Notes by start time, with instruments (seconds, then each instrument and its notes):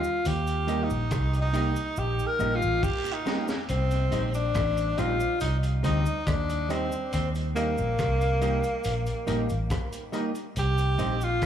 Already playing: tenor saxophone F4
0.04 cabasa
0.25 fingered electric bass D#2, tenor saxophone G4, closed hi-hat, cabasa
0.47 closed hi-hat, cabasa
0.67 clean electric guitar G3 A#3 D#4 G4, upright piano D#4 G4 A#4 D#5, closed hi-hat, cabasa
0.84 tenor saxophone D#4
0.90 fingered electric bass A#1, cabasa
1.11 fingered electric bass C2, kick, cross-stick, closed hi-hat, cabasa
1.33 closed hi-hat, cabasa
1.41 tenor saxophone D#4
1.52 clean electric guitar G3 A#3 D#4 G4, upright piano D#4 G4 A#4 D#5, closed hi-hat, cabasa
1.76 closed hi-hat, cabasa
1.96 fingered electric bass A#1, tenor saxophone G4, cabasa
2.19 cabasa
2.27 tenor saxophone A#4
2.39 fingered electric bass A#1, clean electric guitar G3 A#3 D#4 G4, upright piano D#4 G4 A#4 D#5, cabasa
2.56 tenor saxophone F4
2.62 fingered electric bass A1, cabasa
2.83 tenor saxophone G4, kick, cabasa, long guiro
3.05 muted clean electric guitar stroke, cabasa
3.13 tenor saxophone D#4
3.25 clean electric guitar G3 A#3 D#4 G4, upright piano D#4 G4 A#4 D#5, snare, cabasa
3.48 snare, cabasa
3.69 fingered electric bass C2, tenor saxophone C4, closed hi-hat, cabasa
3.91 closed hi-hat, cabasa
4.11 fingered electric bass A#1, clean electric guitar G3 C4 D#4 G4, upright piano D#4 G4 C5 D#5, closed hi-hat, cabasa
4.34 tenor saxophone D4, closed hi-hat, cabasa
4.54 fingered electric bass A1, kick, cross-stick, closed hi-hat, cabasa
4.77 closed hi-hat, cabasa
4.97 fingered electric bass A#1, clean electric guitar G3 C4 D#4 G4, upright piano D#4 G4 C5 D#5, tenor saxophone F4, closed hi-hat, cabasa
5.20 upright piano C5 D#5, cabasa
5.40 fingered electric bass C2, tenor saxophone D#4, closed hi-hat, cabasa
5.63 closed hi-hat, cabasa
5.83 fingered electric bass D2, clean electric guitar G3 C4 D#4 G4, upright piano D#4 G4 C5 D#5, tenor saxophone D#4, closed hi-hat, cabasa
6.06 cabasa
6.27 fingered electric bass D#2, tenor saxophone D4, kick, cross-stick, closed hi-hat, cabasa
6.49 muted clean electric guitar stroke, closed hi-hat, cabasa
6.69 clean electric guitar G3 C4 D#4 G4, tenor saxophone C4, upright piano D#4 G4 C5 D#5, closed hi-hat, cabasa
6.92 cabasa
7.13 fingered electric bass D#2, tenor saxophone C4, closed hi-hat, cabasa
7.35 closed hi-hat, cabasa
7.55 clean electric guitar G3 A#3 D#4 G4, tenor saxophone A#3, upright piano D#4 G4 A#4 D#5, closed hi-hat, cabasa
7.78 fingered electric bass A#1, cabasa
7.99 fingered electric bass C2, kick, cross-stick, closed hi-hat, cabasa
8.21 closed hi-hat, cabasa
8.41 clean electric guitar G3 A#3 D#4 G4, upright piano D#4 G4 A#4 D#5, closed hi-hat, cabasa
8.63 upright piano A#4 D#5, closed hi-hat, cabasa
8.84 fingered electric bass A#1, closed hi-hat, cabasa
9.06 closed hi-hat, cabasa
9.26 fingered electric bass A#1, clean electric guitar G3 A#3 D#4 G4, upright piano D#4 G4 A#4 D#5, closed hi-hat, cabasa
9.49 fingered electric bass A1, closed hi-hat, cabasa
9.70 kick, cross-stick, closed hi-hat, cabasa
9.93 closed hi-hat, cabasa
10.12 clean electric guitar G3 A#3 D#4 G4, upright piano D#4 G4 A#4 D#5, closed hi-hat, cabasa
10.35 closed hi-hat, cabasa
10.56 fingered electric bass C2, tenor saxophone G4, closed hi-hat, cabasa
10.78 closed hi-hat, cabasa
10.98 fingered electric bass A#1, clean electric guitar G3 C4 D#4 G4, upright piano D#4 G4 C5 D#5, closed hi-hat, cabasa
11.21 tenor saxophone F4, closed hi-hat, cabasa
11.42 fingered electric bass A1, kick, cross-stick, closed hi-hat, cabasa